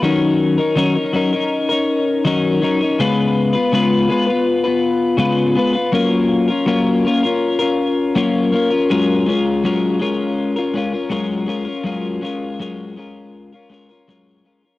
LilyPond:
\new Staff \with { instrumentName = "Clean electric guitar" } { \time 4/4 \key fis \major \tempo 4 = 81 <dis fis cis' dis' ais'>8. <cis' dis' ais'>16 <dis fis cis' dis' ais'>16 <cis' dis' ais'>16 <fis cis' dis' ais'>16 <cis' dis' ais'>8 <cis' dis' ais'>8. <dis fis cis' dis' ais'>8 <fis cis' dis' ais'>16 <cis' dis' ais'>16 | <cis gis b eis' b'>8. <b eis' b'>16 <cis gis b eis' b'>8 <gis b eis' b'>16 <b eis' b'>8 <b eis' b'>8. <cis gis b eis' b'>8 <gis b eis' b'>16 <b eis' b'>16 | <fis ais cis' eis' ais'>8. <cis' eis' ais'>16 <fis ais cis' eis' ais'>8 <ais cis' eis' ais'>16 <cis' eis' ais'>8 <cis' eis' ais'>8. <fis ais cis' eis' ais'>8 <ais cis' eis' ais'>16 <cis' eis' ais'>16 | <fis gis cis' eis' ais'>8 <gis cis' eis' ais'>8 <fis gis cis' eis' ais'>8 <gis cis' eis' ais'>8. <cis' eis' ais'>16 <gis cis' eis' ais'>16 <cis' eis' ais'>16 <fis gis cis' eis' ais'>8 <gis cis' eis' ais'>16 <cis' eis' ais'>16 |
<fis gis cis' eis' ais'>8 <gis cis' eis' ais'>8 <fis gis cis' eis' ais'>8 <gis cis' eis' ais'>8. <cis' eis' ais'>16 <gis cis' eis' ais'>16 <cis' eis' ais'>16 <fis gis cis' eis' ais'>8 <gis cis' eis' ais'>16 <cis' eis' ais'>16 | }